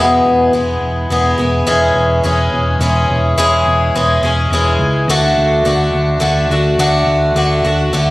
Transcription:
Already playing: E1 E2 B2 E3 G#3 B3 G#4
0.25 E1
0.53 E1 E3 G#3 B3 G#4
0.81 E1
1.10 E1 E3 G#3 B3 G#4
1.38 E1 E3 G#3 B3 G#4
1.66 E1 E3 G#3 C#4 G#4
1.94 E1
2.23 E1 E3 G#3 C#4 G#4
2.52 E1
2.79 E1 E3 G#3 C#4
2.83 G#4
3.09 E1
3.37 E1 E3 G#3 C#4 G#4
3.66 E1
3.94 E1 E3 G#3 C#4 G#4
4.22 E1 G#3 C#4 G#4
4.50 E1 E3 G#3 C#4
4.55 G#4
4.79 C#2
5.08 D2 D3 A3 D4 F#4
5.38 D2
5.65 D2 D3 A3 D4 F#4
5.94 D2
6.20 D2 D3 A3 D4 F#4
6.49 D2 A3 D4 F#4
6.79 D2 D3 A3 D4 F#4
7.07 D2
7.35 D2 D3 A3 D4 F#4
7.64 D2 A3 D4 F#4
7.93 D2 D3 A3 D4 F#4

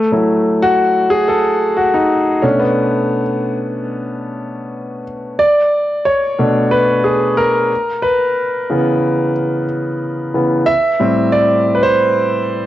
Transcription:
Already playing: A3
0.12 F#3 A3 E4
0.62 F#4
1.10 G#4
1.28 A4
1.77 F#4
1.94 D#4
2.42 B2 A3 C#4 D4
2.59 B3
5.39 D5
6.05 C#5
6.39 B2 A3 D4
6.71 B4
7.04 G#4
7.37 A#4
8.02 B4
8.70 C#3 E3 B3
10.34 C#3 E3 B3
10.66 E5
11.00 A2 G3 C4
11.32 D5
11.75 B4
11.83 C5

